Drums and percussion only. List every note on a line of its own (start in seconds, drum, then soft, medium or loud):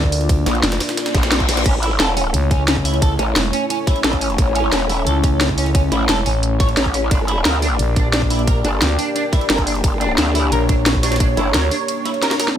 0.04 kick medium
0.12 open hi-hat medium
0.12 ride medium
0.21 ride soft
0.29 kick loud
0.29 closed hi-hat medium
0.29 ride loud
0.46 snare loud
0.46 closed hi-hat medium
0.46 ride medium
0.55 ride soft
0.63 snare loud
0.63 closed hi-hat medium
0.63 ride medium
0.72 snare loud
0.72 ride medium
0.80 snare loud
0.80 open hi-hat medium
0.80 ride medium
0.89 snare loud
0.89 ride medium
0.97 snare loud
0.97 closed hi-hat loud
0.97 ride medium
1.06 snare loud
1.06 ride medium
1.15 kick loud
1.15 snare loud
1.15 closed hi-hat medium
1.15 ride medium
1.23 snare loud
1.23 ride medium
1.32 snare loud
1.32 closed hi-hat medium
1.32 ride medium
1.40 kick medium
1.40 ride soft
1.49 snare loud
1.49 open hi-hat medium
1.49 ride medium
1.57 snare loud
1.57 ride medium
1.66 kick loud
1.66 closed hi-hat loud
1.66 crash medium
1.66 ride medium
1.83 closed hi-hat medium
1.83 ride medium
2.00 snare loud
2.00 closed hi-hat medium
2.00 ride medium
2.17 open hi-hat medium
2.17 ride medium
2.34 closed hi-hat loud
2.34 ride medium
2.51 kick loud
2.51 closed hi-hat medium
2.51 ride medium
2.68 snare loud
2.68 closed hi-hat medium
2.68 ride medium
2.76 kick medium
2.85 open hi-hat medium
2.85 ride medium
2.94 ride soft
3.02 kick loud
3.02 closed hi-hat loud
3.02 ride medium
3.19 closed hi-hat medium
3.19 ride medium
3.36 snare loud
3.36 closed hi-hat medium
3.36 ride medium
3.53 open hi-hat medium
3.53 ride medium
3.70 closed hi-hat loud
3.70 ride medium
3.87 kick loud
3.87 snare soft
3.87 closed hi-hat medium
3.87 ride medium
3.96 ride soft
4.04 snare loud
4.04 closed hi-hat loud
4.04 ride medium
4.13 kick medium
4.13 ride soft
4.21 open hi-hat medium
4.21 ride medium
4.30 ride soft
4.38 kick loud
4.38 closed hi-hat loud
4.38 ride medium
4.55 closed hi-hat medium
4.55 ride medium
4.72 snare loud
4.72 closed hi-hat medium
4.72 ride medium
4.89 open hi-hat medium
4.89 ride medium
5.07 closed hi-hat loud
5.07 ride medium
5.24 kick loud
5.24 closed hi-hat medium
5.24 ride medium
5.41 snare loud
5.41 closed hi-hat medium
5.41 ride medium
5.49 kick medium
5.58 open hi-hat medium
5.58 ride medium
5.66 ride soft
5.75 kick loud
5.75 closed hi-hat medium
5.75 ride medium
5.92 closed hi-hat medium
5.92 ride medium
6.09 snare loud
6.09 closed hi-hat medium
6.09 ride medium
6.26 open hi-hat medium
6.26 ride medium
6.43 closed hi-hat loud
6.60 kick loud
6.60 snare soft
6.60 closed hi-hat medium
6.60 ride medium
6.69 ride soft
6.77 snare loud
6.77 closed hi-hat medium
6.77 ride medium
6.86 kick medium
6.94 open hi-hat medium
6.94 ride medium
7.11 kick loud
7.11 closed hi-hat medium
7.11 ride loud
7.28 closed hi-hat medium
7.28 ride medium
7.45 snare loud
7.45 closed hi-hat medium
7.45 ride medium
7.62 open hi-hat medium
7.62 ride medium
7.79 closed hi-hat loud
7.79 ride medium
7.96 kick loud
7.96 closed hi-hat medium
7.96 ride medium
8.13 snare loud
8.13 closed hi-hat medium
8.13 ride medium
8.22 kick medium
8.30 open hi-hat medium
8.30 ride medium
8.39 ride soft
8.47 kick loud
8.47 closed hi-hat medium
8.47 ride medium
8.65 closed hi-hat medium
8.65 ride medium
8.82 snare loud
8.82 closed hi-hat medium
8.82 ride medium
8.99 open hi-hat medium
8.99 ride medium
9.16 closed hi-hat medium
9.16 ride medium
9.33 kick loud
9.33 snare soft
9.33 closed hi-hat medium
9.33 ride medium
9.41 ride soft
9.50 snare loud
9.50 closed hi-hat medium
9.50 ride medium
9.58 kick medium
9.58 ride soft
9.67 open hi-hat medium
9.67 ride medium
9.75 ride soft
9.84 kick loud
9.84 closed hi-hat medium
9.84 ride medium
10.01 closed hi-hat medium
10.01 ride medium
10.18 snare loud
10.18 closed hi-hat medium
10.18 ride medium
10.35 open hi-hat medium
10.35 ride medium
10.52 closed hi-hat loud
10.52 ride medium
10.69 kick loud
10.69 closed hi-hat medium
10.69 ride medium
10.86 snare loud
10.86 closed hi-hat medium
10.86 ride medium
10.95 kick medium
11.03 snare loud
11.03 open hi-hat medium
11.03 ride medium
11.12 snare medium
11.12 ride medium
11.16 snare medium
11.16 ride medium
11.20 kick loud
11.20 closed hi-hat medium
11.20 ride loud
11.37 closed hi-hat medium
11.37 ride medium
11.54 snare loud
11.54 closed hi-hat loud
11.54 ride medium
11.71 open hi-hat medium
11.71 ride medium
11.88 closed hi-hat loud
11.88 ride medium
12.05 snare soft
12.05 closed hi-hat medium
12.05 ride medium
12.14 ride soft
12.22 snare medium
12.22 snare loud
12.22 closed hi-hat medium
12.22 ride medium
12.31 snare medium
12.31 snare loud
12.31 ride medium
12.40 snare loud
12.40 open hi-hat medium
12.40 ride medium
12.48 snare medium
12.48 ride soft